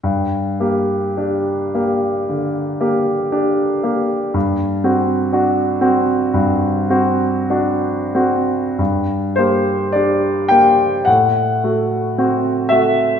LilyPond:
\new Staff \with { instrumentName = "Grand piano" } { \time 4/4 \key g \minor \tempo 4 = 54 << { r1 | r1 | r8 c''8 d''8 g''8 fis''4. e''8 | } \\ { g,8 <bes g'>8 <d' g'>8 <bes g'>8 d8 <bes g'>8 <d' g'>8 <bes g'>8 | g,8 <c' fis'>8 <d' fis'>8 <c' fis'>8 g,8 <c' fis'>8 <d' fis'>8 <c' fis'>8 | g,8 <bes g'>8 <d' g'>8 <bes g'>8 a,8 <a fis'>8 <c' fis'>8 <a fis'>8 | } >> }